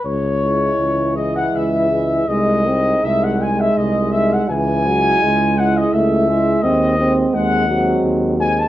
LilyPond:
<<
  \new Staff \with { instrumentName = "Trumpet section" } { \time 3/4 \key cis \minor \tempo 4 = 83 cis''4. dis''16 fis''16 e''4 | dis''4 e''16 fis''16 gis''16 e''16 dis''8 e''16 fis''16 | gis''4. fis''16 dis''16 e''4 | dis''4 fis''4 r8 gis''16 a''16 | }
  \new Staff \with { instrumentName = "French horn section" } { \time 3/4 \key cis \minor r8 e'4 e'4 e'8 | dis'8 dis'4 dis'4 dis'8 | r8 e'4 e'4 e'8 | bis8 bis4 bis4 bis8 | }
  \new Staff \with { instrumentName = "Euphonium" } { \clef bass \time 3/4 \key cis \minor r8 gis4 gis4 gis8 | gis8 gis4 gis4 gis8 | r8 gis4 gis4 gis8 | gis8 gis4 gis4 gis8 | }
  \new Staff \with { instrumentName = "Euphonium" } { \clef bass \time 3/4 \key cis \minor r4 e2 | gis8 bis8 gis2 | e8 fis8 gis4 a8 gis8 | bis8 bis8 gis8 fis4 r8 | }
  \new Staff \with { instrumentName = "Tuba" } { \clef bass \time 3/4 \key cis \minor cis,4 cis,4 cis,4 | bis,,4 bis,,4 bis,,4 | cis,4 cis,4 cis,4 | dis,4 dis,4 dis,4 | }
>>